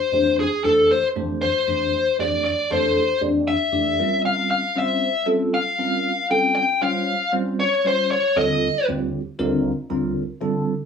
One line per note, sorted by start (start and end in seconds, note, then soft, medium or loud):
0.00 0.35 C5 loud
0.13 0.44 F2 medium
0.13 0.45 E3 medium
0.13 0.44 A3 medium
0.13 0.44 D4 medium
0.13 0.45 G4 medium
0.13 0.45 C5 medium
0.40 0.64 G#4 medium
0.64 0.96 F2 medium
0.64 0.96 E3 medium
0.64 0.96 A3 medium
0.64 0.96 D4 medium
0.64 0.96 G4 medium
0.64 0.90 A4 medium
0.64 0.96 C5 medium
0.91 1.07 C5 medium
1.16 1.47 F2 medium
1.16 1.48 E3 medium
1.16 1.48 A3 medium
1.16 1.47 D4 medium
1.16 1.48 G4 medium
1.16 1.48 C5 medium
1.42 2.15 C5 medium
1.67 1.99 F2 medium
1.67 1.99 E3 medium
1.67 1.99 A3 medium
1.67 1.99 D4 medium
1.67 1.99 G4 medium
1.67 1.99 C5 medium
2.19 2.51 F2 medium
2.19 2.51 E3 medium
2.19 2.51 A3 medium
2.19 2.51 D4 medium
2.19 2.51 G4 medium
2.19 2.51 D5 medium
2.19 2.43 D5 medium
2.44 2.70 D5 medium
2.70 3.02 F2 medium
2.70 3.02 E3 medium
2.70 3.02 A3 medium
2.70 3.02 D4 medium
2.70 3.02 G4 medium
2.70 3.02 A4 medium
2.70 3.19 C5 medium
3.21 3.53 F2 medium
3.21 3.53 E3 medium
3.21 3.53 A3 medium
3.21 3.53 D4 medium
3.21 3.53 G4 medium
3.21 3.53 D5 medium
3.48 4.21 E5 medium
3.72 3.99 F2 medium
3.72 3.99 E3 medium
3.72 3.99 A3 medium
3.72 3.99 D4 medium
3.72 3.99 G4 medium
3.72 3.99 D5 medium
3.99 4.61 G3 medium
3.99 4.61 C4 medium
3.99 4.62 C#4 medium
3.99 4.62 F4 medium
3.99 4.61 A#4 medium
4.25 4.50 F5 medium
4.51 4.76 F5 medium
4.75 5.07 G3 medium
4.75 5.07 C4 medium
4.75 5.07 C#4 medium
4.75 5.07 F4 medium
4.75 5.08 C5 medium
4.75 5.25 E5 medium
5.26 5.58 G3 medium
5.26 5.59 C4 medium
5.26 5.58 C#4 medium
5.26 5.59 F4 medium
5.26 5.58 A4 medium
5.54 6.27 F5 medium
5.79 6.10 G3 medium
5.79 6.11 C4 medium
5.79 6.11 C#4 medium
5.79 6.11 F4 medium
5.79 6.11 A#4 medium
6.30 6.62 G3 medium
6.30 6.62 C4 medium
6.30 6.62 C#4 medium
6.30 6.62 F4 medium
6.30 6.62 A4 medium
6.30 6.54 G5 medium
6.56 6.81 G5 loud
6.81 7.13 G3 medium
6.81 7.13 C#4 medium
6.81 7.13 F4 medium
6.81 7.13 C5 medium
6.81 7.13 C#5 medium
6.81 7.31 F5 medium
7.33 7.65 G3 medium
7.33 7.64 C4 medium
7.33 7.65 C#4 medium
7.33 7.65 F4 medium
7.33 7.65 C5 medium
7.60 7.85 C#5 loud
7.85 8.16 G3 medium
7.85 8.16 C#4 medium
7.85 8.16 F4 medium
7.85 8.16 C5 medium
7.85 8.11 C5 medium
7.85 8.16 C#5 medium
8.11 8.36 C#5 loud
8.36 8.68 D#2 medium
8.36 8.68 D3 medium
8.36 8.68 G3 medium
8.36 8.68 C4 medium
8.36 8.68 F4 medium
8.36 8.68 A4 medium
8.36 8.85 D#5 loud
8.88 9.20 D#2 medium
8.88 9.20 D3 medium
8.88 9.19 G3 medium
8.88 9.20 C4 medium
8.88 9.20 F4 medium
8.88 9.20 G4 medium
9.39 9.70 D#2 loud
9.39 9.70 D3 medium
9.39 9.70 G3 medium
9.39 9.71 C4 medium
9.39 9.71 F4 medium
9.39 9.71 A#4 loud
9.90 10.22 D#2 medium
9.90 10.22 D3 medium
9.90 10.22 G3 medium
9.90 10.22 C4 medium
9.90 10.22 F4 medium
9.90 10.22 A#4 medium
10.41 10.73 D3 medium
10.41 10.73 G3 medium
10.41 10.73 C4 medium
10.41 10.73 F4 medium
10.41 10.73 A4 loud